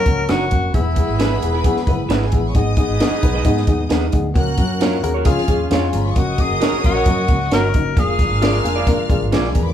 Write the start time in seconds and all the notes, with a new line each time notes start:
Already playing: F#3 A#3 C#4 F#4 A#4 C#5 C#6
0.05 C#2 A#3 C#4 F#4, kick, closed hi-hat
0.28 F#1 A#3 C#4 D#4 F#4 A#4, snare, closed hi-hat
0.51 F1 A#3 C#4 F#4, kick, closed hi-hat
0.73 E1 E3 G#3 B3 E4 G#4 B4 B5, kick, closed hi-hat
0.96 B3 E4 G#4, kick, closed hi-hat
1.09 G#1
1.19 B3 E4 G#4 B4, snare, closed hi-hat
1.42 E1 B3 E4 G#4, closed hi-hat
1.53 E4 G#4 B4
1.64 B3 E4 G#4, kick, closed hi-hat
1.77 muted fingered electric bass stroke, snare
1.87 F#1 B3 E4 B4, kick, closed hi-hat
2.09 G#1 B3 E4 G#4 B4, snare, closed hi-hat
2.22 G#4 G#5, snare
2.32 A1 B3 E4 G#4 A#4 A#5, kick, closed hi-hat
2.40 B4 B5
2.48 C#5 C#6
2.54 G#1 D#3 B3 D#4 G#4 B4 D#5 D#6, kick, closed hi-hat
2.77 B3 D#4 G#4, kick, closed hi-hat
2.89 G#1
2.99 B3 D#4 G#4 B4, snare, closed hi-hat
3.11 muted fingered electric bass stroke
3.22 B1 B3 D#4 B4, kick, closed hi-hat
3.34 D#4 G#4 B4
3.45 G#2 B3 D#4 G#4, kick, closed hi-hat
3.57 snare
3.67 D#2 B3 D#4 G#4, kick, closed hi-hat
3.90 D#2 B3 D#4 G#4 B4, snare, closed hi-hat
4.12 D2 B3 D#4 G#4, kick, closed hi-hat
4.34 C#2 F#3 A#3 C#4 F#4 A#4 F#5 F#6, kick, closed hi-hat
4.57 F#2 A#3 C#4 F#4, kick, closed hi-hat
4.80 A#3 C#4 F4 F#4 A#4 C#5, snare, closed hi-hat
5.02 D#2 A#3 C#4 F#4 G#4 A#4, closed hi-hat
5.14 F#4 A#4 C#5
5.25 C#2 F3 G#3 C#4 F4 G#4 F5 F6, kick, closed hi-hat
5.37 muted fingered electric bass stroke, snare
5.48 D#2 G#3 C#4 F4 G#4, kick, closed hi-hat
5.70 F2 G#3 C#4 F4 G#4 C#5 F5, snare, closed hi-hat
5.79 F#4 F#5
5.86 G#4 G#5
5.93 G1 G#3 C#4 F4 A#4 A#5, closed hi-hat
6.01 B4 B5
6.08 C#5 C#6
6.15 F#1 C#3 F#3 A#3 C#4 F#4 A#4 C#5 D#5 D#6, kick, closed hi-hat
6.38 A#3 C#4 F#4 G#4, kick, closed hi-hat
6.50 F#1
6.61 A#3 C#4 F#4 A#4 C#5, snare, closed hi-hat
6.73 muted fingered electric bass stroke
6.84 A#1 A#3 C#4 F#4, kick, closed hi-hat
6.95 F#4 A#4 C#5
7.06 F#2 A#3 C#4 F#4, kick, closed hi-hat
7.28 C#2 A#3 C#4 F#4, kick, closed hi-hat
7.51 G1 A#3 C#4 F#4 A#4 C#5, snare, closed hi-hat
7.74 F#1 A#3 C#4 D#4, kick, closed hi-hat
7.96 F1 D3 G#3 A#3 D4 F4 G#4 A#4 F5 F6, kick, closed hi-hat
8.19 A#3 D4 G#4, kick, closed hi-hat
8.30 G#1
8.42 A#3 D4 F4 G#4 D5, snare, closed hi-hat
8.64 F1 A#3 D4 F4 G#4, closed hi-hat
8.76 F4 G#4 D5
8.86 A#3 D4 F4 A#4, kick, closed hi-hat
9.09 F#1 A#3 D4 G#4, kick, closed hi-hat
9.22 G#1
9.31 A#1 A#3 D4 F4 G#4 D5 F5, snare, closed hi-hat
9.40 F#4 F#5
9.45 G#4 G#5, snare
9.54 E2 A#3 D4 G#4 A#4 A#5, kick, closed hi-hat
9.62 B4 B5
9.69 D5 D6